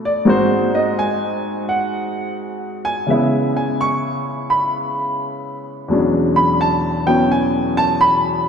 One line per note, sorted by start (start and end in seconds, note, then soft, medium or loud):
0.00 0.25 B2 medium
0.00 0.26 A3 soft
0.00 0.27 B3 soft
0.00 0.28 D4 medium
0.05 0.27 D5 medium
0.25 3.08 G#2 medium
0.25 3.07 G#3 medium
0.25 3.09 C4 medium
0.25 3.09 F#4 medium
0.29 0.73 C5 medium
0.75 0.97 D#5 medium
0.99 1.64 G#5 loud
1.69 2.34 F#5 medium
2.85 3.08 G#5 loud
3.07 5.89 C#3 medium
3.07 5.89 G#3 soft
3.07 5.91 B3 soft
3.07 3.55 E5 medium
3.12 5.92 E4 medium
3.57 3.79 G#5 medium
3.81 4.47 C#6 loud
4.50 5.16 B5 medium
5.88 8.49 E2 soft
5.88 7.05 B2 soft
5.88 7.05 F#3 soft
5.88 8.49 G#3 soft
5.88 7.08 C#4 soft
5.93 8.49 D4 medium
6.36 6.59 B5 medium
6.61 7.05 A5 medium
7.06 8.49 B2 soft
7.06 8.49 E3 soft
7.06 8.49 F#3 soft
7.06 8.49 B3 soft
7.06 8.49 C#4 medium
7.06 7.29 G5 medium
7.31 7.75 G#5 medium
7.77 7.99 A5 loud
8.01 8.44 B5 loud